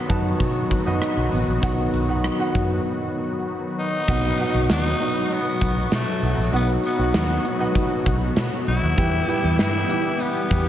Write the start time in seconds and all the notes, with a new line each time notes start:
Already playing: B2 D#3 F#3 B3 D#4 F#4 B4 F#5
0.09 F#2 D#4 F#4 B4 A5, kick, closed hi-hat
0.40 B2, kick, closed hi-hat
0.71 kick, closed hi-hat
0.86 F#2 D#4 F#4 B4 D#5
1.01 cross-stick, closed hi-hat
1.17 B1
1.32 A1 B2, closed hi-hat
1.48 A#1
1.62 B1 D#4 F#4 B4 F#5, kick, closed hi-hat
1.94 B1, closed hi-hat
2.09 D#4 F#4 B4 F#5
2.24 cross-stick, closed hi-hat
2.39 D#4 F#4 B4 F#5
2.55 F#2, kick, closed hi-hat
3.79 D#4
4.08 B1 B2 F#3 B3 D#4 F#4 B4 F#5, kick, crash
4.38 D#4 F#4 B4 F#5, closed hi-hat
4.54 B1
4.70 D#2 D#4, snare, closed hi-hat
5.00 D#4 F#4 B4 D#5, closed hi-hat
5.31 B3, closed hi-hat
5.61 B1, kick, closed hi-hat
5.92 B2 A3, snare, closed hi-hat
6.22 B1, open hi-hat
6.38 A#1
6.52 B1 B2 B3 D#4 F#4 B4 F#5, closed hi-hat
6.84 B3, closed hi-hat
6.98 B1 D#4 F#4 B4 F#5
7.14 D#2, snare, closed hi-hat
7.45 closed hi-hat
7.59 D#4 F#4 B4 F#5
7.75 kick, closed hi-hat
8.06 B1, kick, closed hi-hat
8.36 B2, snare, closed hi-hat
8.67 B1 E4, open hi-hat
8.83 D#2
8.97 E2 E3 G3 E4 G4 B4 G5, kick, closed hi-hat
9.28 E4 G4 B4 G5, closed hi-hat
9.44 E2
9.59 G2 E4, snare, closed hi-hat
9.89 E4 G4 B4 G5, closed hi-hat
10.20 B3, closed hi-hat
10.51 E2, kick, closed hi-hat